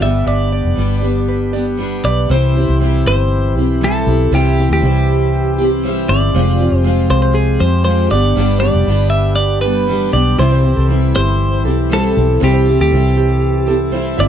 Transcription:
Already playing: G4
0.01 G1 G2 D3 G3 B3 D4 G4 D5 E5
0.26 G1 D5 E5
0.53 D5
0.65 F1
0.75 G1 G3 B3 D4 G4
1.01 G3 B3 D4 G4 B4
1.28 B4
1.53 G3 B3 D4 G4 D5
1.77 G3 B3 D4 G4
2.04 B1 B4 D5
2.29 C2 C3 E3 G3 C4 E4 G4 C5
2.55 C4 E4 G4
2.69 C2
2.80 G3 C4 E4 G4
3.06 G1 C5
3.55 B1 C4 E4 G4
3.81 G3 C4 E4 G4 A4
4.07 B1 C4 E4 G4
4.31 C2 C3 G3 C4 E4 G4
4.57 C4 E4 G4
4.70 D2 G4
4.81 C2 G3 C4 E4 G4
5.58 C4 E4 G4
5.83 G3 C4 E4 G4
6.09 G1 C4 E4 G4 D5
6.32 F1 F3 G#3 C4 F4
6.36 G4
6.59 C4 F4 G4
6.72 F1
6.77 C5
6.84 G#3 C4 F4 G4
7.10 C2 C5
7.22 C5
7.35 G#4
7.59 F2 C4 F4 G4 C5
7.85 G#3 C4 F4 G4 C5
8.10 G1 G3 B3 D4 G4 D5
8.36 G1 G2 D3 G3 B3 D4 G4
8.60 B3 D4 G4 D5
8.64 G3
8.74 F1
8.86 G1 G3 B3 D4 G4
9.10 E5
9.36 D5
9.61 B3 D4 G4 B4
9.66 G3
9.87 G3 B3 D4 G4
10.13 B1 G3 B3 D4 G4 D5
10.38 C2 C3 E3 G3 C4 E4 G4 C5
10.52 C5
10.63 C4 E4 G4
10.77 C2 A4
10.88 G3 C4 E4 G4
11.15 G1 G4 C5
11.65 B1 C4 E4 G4 A4
11.90 G3 C4 E4 G4 A4
12.14 B1 C4 E4 G4
12.40 C2 C3 G3 C4 E4 G4 A4
12.54 C5
12.67 C4 E4 G4
12.79 D2 G4 A4
12.91 C2 G3 C4 E4 G4
13.17 G4
13.67 C4 E4 G4 A4
13.92 G3 C4 E4 G4 C5
14.17 G1 C4 E4 G4 D5 E5

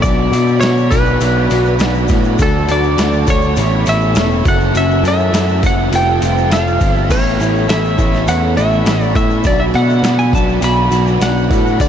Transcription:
0.02 B1 B2 F#3 B3 D4 F#4 D5 B5, kick, open hi-hat, shaker
0.06 D5
0.32 B2 F#3 B3 D4, open hi-hat, shaker
0.36 F#4 D5
0.47 shaker
0.61 B2 F#3 B3 D4 C#5, snare, open hi-hat, shaker
0.65 F#4 D5
0.77 shaker
0.91 B1 B2 F#3 B3 D4 F#4 B4 D5, kick, open hi-hat, shaker
1.05 shaker
1.20 B1 B2 F#3 B3 D4 F#4 D5, open hi-hat, shaker
1.50 B1 B2 F#3 B3 D4 F#4 D5, open hi-hat, shaker
1.65 shaker
1.79 B1 B2 F#3 B3 D4 F#4 D5, snare, open hi-hat, shaker
1.94 shaker
2.08 A2 B2 F#3 B3 D4 F#4, kick, open hi-hat, shaker
2.12 D5
2.24 shaker
2.39 D2 D3 F#3 A3 D4 F#4 A4 D5 A5, kick, open hi-hat, shaker
2.68 D2 D3 F#3 A3 D4 F#4 D5, open hi-hat, shaker
2.83 shaker
2.98 D2 D3 F#3 A3 D4 F#4 D5, snare, open hi-hat, shaker
3.12 shaker
3.27 D2 D3 F#3 A3 D4 F#4 C#5 D5, kick, open hi-hat, shaker
3.42 shaker
3.56 A1 A2 E3 A3 B3 C#4 E4 A4 C#5 B5, open hi-hat, shaker
3.86 A1 A2 E3 A3 B3 C#4 E4 A4 C#5 E5, open hi-hat, shaker
4.01 shaker
4.15 E1 A2 E3 A3 B3 C#4 E4 A4 C#5, snare, open hi-hat, shaker
4.31 shaker
4.45 F#1 F#3 A3 C#4 E4 F#4 A4 E5 F#5 A5, kick, open hi-hat, shaker
4.60 shaker
4.74 F#1 F#3 A3 C#4 E4 F#4 A4 E5, open hi-hat, shaker
4.91 shaker
5.03 F#2 F#3 A3 C#4 E4 F#4 A4, open hi-hat, shaker
5.08 E5
5.20 shaker
5.33 F#2 F#3 A3 C#4 E4 F#4 A4, snare, open hi-hat, shaker
5.49 shaker
5.62 F#1 F#3 A3 C#4 E4 F#4 A4, kick, open hi-hat, shaker
5.66 F#5
5.91 F1 F3 G3 A3 C4 F4 G4 A4 F5 A5, open hi-hat, shaker
5.96 G5
6.21 F1 F3 G3 A3 C4 F4 A4, open hi-hat, shaker
6.38 shaker
6.50 F1 F3 G3 A3 C4 F4 A4 F5, snare, open hi-hat, shaker
6.67 shaker
6.79 G1 F3 G3 A3 C4 F4 A4, kick, open hi-hat, shaker
6.96 E5, shaker
7.09 A1 A2 E3 A3 B3 C#4 E4 A4 C#5 B5, kick, crash, shaker
7.39 A1 A2 E3 A3 B3 C#4 E4 A4 C#5, open hi-hat, shaker
7.55 shaker
7.68 A1 A2 E3 A3 B3 C#4 E4 A4 C#5 E5, snare, open hi-hat, shaker
7.84 shaker
7.97 A1 A2 E3 A3 B3 C#4 E4 A4 C#5, kick, open hi-hat, shaker
8.14 snare, shaker
8.26 E2 A2 E3 A3 B3 C#4 E4 A4 C#5 F#5, open hi-hat, shaker
8.55 A1 A2 E3 A3 B3 C#4 E4 A4 C#5 E5, open hi-hat, shaker
8.72 shaker
8.85 A1 A2 E3 A3 B3 C#4 E4 A4 C#5, snare, open hi-hat, shaker
9.01 D5, shaker
9.15 A2 E3 A3 B3 C#4 E4 A4 E5, kick, open hi-hat, shaker
9.30 shaker
9.44 B1 B2 F#3 B3 D4 F#4 D5, kick, open hi-hat, shaker
9.60 E5
9.74 B2 F#3 B3 D4 F#4 D5 F#5, open hi-hat
9.90 shaker
10.03 B2 F#3 B3 D4 F#4 D5, snare, open hi-hat, shaker
10.19 G#5, shaker
10.33 B1 B2 F#3 B3 D4 F#4 D5 A5, kick, open hi-hat, shaker
10.49 shaker
10.61 B1 B2 F#3 B3 D4 F#4 D5 B5, open hi-hat, shaker
10.90 B1 B2 F#3 B3 D4 F#4 D5, open hi-hat, shaker
11.07 shaker
11.20 B1 B2 F#3 B3 D4 F#4 D5 F#5, snare, open hi-hat, shaker
11.37 shaker
11.50 A2 B2 F#3 B3 D4 F#4 D5, kick, open hi-hat, shaker
11.67 shaker
11.78 D2 D3 F#3 A3 D4 F#4 D5 A5, kick, open hi-hat, shaker

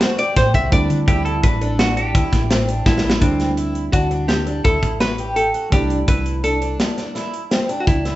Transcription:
Already playing: G3 B3 C4 E4
0.01 F#4 C5, snare, closed hi-hat
0.18 G4 D5, closed hi-hat
0.36 A2 C5, kick, snare, closed hi-hat
0.54 C2 F#4 E5, kick, closed hi-hat
0.70 D2 G3 A3 C4 D4 E4 D5, kick, closed hi-hat
0.90 D3, closed hi-hat
1.08 D2 E4 G4, kick, closed hi-hat
1.25 A4, closed hi-hat
1.43 A1 D4 B4, kick, closed hi-hat
1.61 D4 A4, closed hi-hat
1.79 F#4, snare, closed hi-hat
1.97 D4 G4, closed hi-hat
2.15 D2 E4, kick, closed hi-hat
2.33 A1, kick, snare, closed hi-hat
2.51 C4, snare, closed hi-hat
2.68 D4, closed hi-hat
2.86 A1 E4, kick, snare
2.98 snare
3.04 A1 E4
3.10 snare
3.20 D2 G3 A3 C4 D4 E4, kick, closed hi-hat
3.40 snare, closed hi-hat
3.57 E4, closed hi-hat
3.75 closed hi-hat
3.92 D2 D4 F#4, kick, closed hi-hat
4.11 D4, closed hi-hat
4.28 G4, snare, closed hi-hat
4.47 D4, closed hi-hat
4.64 D2 E4 A4, kick, closed hi-hat
4.83 A1, kick, closed hi-hat
5.00 F#4 B4, snare, closed hi-hat
5.18 G4, closed hi-hat
5.36 A4, closed hi-hat
5.54 F#4, closed hi-hat
5.70 C2 G3 A3 D4 E4 G4, kick, closed hi-hat
5.90 closed hi-hat
6.08 C2 E4 B4, kick, closed hi-hat
6.26 closed hi-hat
6.44 D4 A4, closed hi-hat
6.62 D4, closed hi-hat
6.80 snare, closed hi-hat
6.97 D4, snare, closed hi-hat
7.15 E4, snare, closed hi-hat
7.34 closed hi-hat
7.51 C4, snare, closed hi-hat
7.69 D4, closed hi-hat
7.80 F#4
7.87 C#2 E4, kick, closed hi-hat
8.05 E4, snare, closed hi-hat

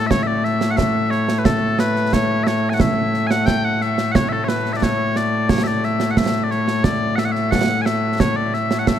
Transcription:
Already playing: A2 A3
0.07 E5
0.11 C#5, concert bass drum, snare
0.23 D5 E5
0.44 E5, snare
0.61 snare
0.71 F#5
0.77 E5, concert bass drum, snare
1.10 C#5, snare
1.29 snare
1.39 B4
1.45 A4, concert bass drum, snare
1.79 B4, snare
1.96 snare
2.13 C#5, concert bass drum, snare
2.43 C#5 E5, snare
2.70 G#5
2.74 F#5
2.80 E5, concert bass drum, snare
3.14 snare
3.27 F#5 G#5, snare
3.46 G5, concert bass drum, snare
3.65 F#5
3.81 E5, snare
3.98 snare
4.12 C#5 F#5, concert bass drum, snare
4.29 A4 E5
4.44 C#5
4.48 B4, snare
4.66 snare
4.73 D5 E5
4.82 C#5, concert bass drum, snare
5.16 D5, snare
5.49 C#5, concert bass drum, snare
5.64 D5 E5
5.83 E5, snare
6.00 snare
6.11 F#5
6.17 E5, concert bass drum, snare
6.43 D5
6.51 C#5, snare
6.68 snare
6.84 D5, concert bass drum, snare
7.16 E5 F#5, snare
7.25 F#5
7.32 E5, snare
7.51 F#5, concert bass drum, snare
7.82 G#5
7.86 E5, snare
8.20 C#5, concert bass drum, snare
8.36 D5
8.54 E5, snare
8.71 snare
8.79 F#5
8.87 E5, concert bass drum, snare

